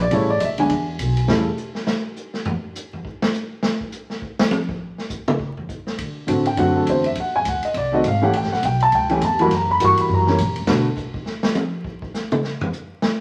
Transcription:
Already playing: upright bass A#1
0.02 upright piano D5
0.11 upright bass A1, upright piano C#3 G3 A3 E4 C#5, kick, ride
0.30 upright piano D5
0.40 upright bass C#2, upright piano D#5, kick, hi-hat pedal, ride
0.44 upright piano E5
0.58 upright piano D3 G#3 B3 D4 G#5, ride
0.69 upright bass E2, kick, ride
0.99 upright bass B1, kick, hi-hat pedal, ride
1.17 ride
1.28 upright bass E2, upright piano C#3 G3 A3 E4, snare
1.57 hi-hat pedal
1.75 snare
1.87 snare
2.16 hi-hat pedal
2.34 snare
2.45 floor tom
2.75 hi-hat pedal
2.93 floor tom
3.05 kick
3.22 snare
3.34 hi-hat pedal
3.63 snare
3.81 kick
3.92 hi-hat pedal
4.10 snare
4.22 kick
4.39 snare
4.51 hi-hat pedal, high tom
4.69 kick
4.98 snare
5.10 kick, hi-hat pedal
5.28 mid tom
5.39 kick
5.57 floor tom
5.69 kick, hi-hat pedal
5.87 snare
5.98 upright bass D3, kick, ride
6.27 upright bass A2, upright piano D3 A3 C4 F#4, kick, hi-hat pedal, ride
6.45 upright piano G5, ride
6.57 upright bass F#2, upright piano D3 A3 C4 F#4 F#5, kick, ride
6.76 upright piano A4
6.86 upright bass E2, upright piano C5, kick, hi-hat pedal, ride
7.04 upright piano E5, ride
7.15 upright bass D#2, kick, ride
7.20 upright piano F#5
7.36 upright piano G#5
7.45 upright bass D2, upright piano F#5, kick, hi-hat pedal, ride
7.62 upright piano D#5, muted upright bass stroke, ride
7.74 upright bass C2, upright piano D5, kick, ride
7.92 upright piano D#3 A3 C4 F#4 D#5
8.04 upright bass G#1, upright piano F5, kick, hi-hat pedal, ride
8.22 upright piano E3 A3 C#4 G4 F#5
8.33 upright bass A1, upright piano G5, kick, ride
8.43 upright bass G1, snare
8.52 upright bass E1, upright piano F#5, snare
8.63 upright bass B1, upright piano G5, kick, hi-hat pedal, ride
8.80 upright piano A5, ride
8.91 upright bass C#2, upright piano G5, kick, ride
9.09 upright piano E3 A3 C#4 G4 G#5, ride
9.21 upright bass E2, upright piano A5, hi-hat pedal, ride
9.39 upright piano E3 G3 A#3 F#4 B5, ride
9.50 upright bass F#2, kick, snare, ride
9.55 upright piano A#5
9.68 upright piano B5, kick
9.80 upright bass G2, upright piano E3 G3 A#3 F#4, kick, hi-hat pedal, ride
9.85 upright piano C#6
9.97 upright piano B5, ride
10.09 upright bass F#2, kick
10.14 upright piano A#5
10.27 upright piano E3 G3 A#3 C#4, snare
10.38 upright bass A#2, kick, hi-hat pedal, ride
10.48 upright bass F#2
10.56 upright bass E2, ride
10.67 upright bass B2, upright piano D3 A3 B3 F#4, snare
10.97 kick, hi-hat pedal
11.14 kick
11.26 snare
11.43 snare
11.55 hi-hat pedal, high tom
11.84 kick
12.02 kick
12.14 snare, hi-hat pedal
12.32 mid tom
12.44 snare
12.61 floor tom
12.73 hi-hat pedal
13.02 snare

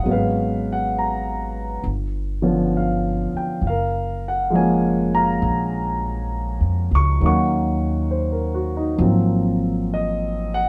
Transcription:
0.03 upright bass G#1, grand piano F#3 G#3 B3
0.09 grand piano C#4 F5
0.13 grand piano B4
0.72 grand piano F#5
0.99 grand piano A#5
1.84 upright bass G1
2.42 grand piano D3 F3 B3 C#4
2.77 grand piano F5
3.33 grand piano G5, muted upright bass stroke
3.62 upright bass F#1
3.67 grand piano A#4 F5
4.28 grand piano F#5
4.50 grand piano F3 G#3 A#3
4.55 grand piano C#4 G#5
5.15 grand piano F5 A#5
5.42 upright bass A#1
6.61 upright bass F2
6.91 upright bass C#2, grand piano C#6
7.21 upright bass D#2, grand piano D#3 F#3 A#3
7.25 grand piano C#4 F#5 C#6
8.11 grand piano C5
8.32 grand piano A#4
8.54 grand piano F#4
8.77 grand piano D#4
8.97 upright bass G#1, grand piano F3 F#3 A#3
9.02 grand piano C4
9.94 grand piano D#5
10.54 grand piano F#5

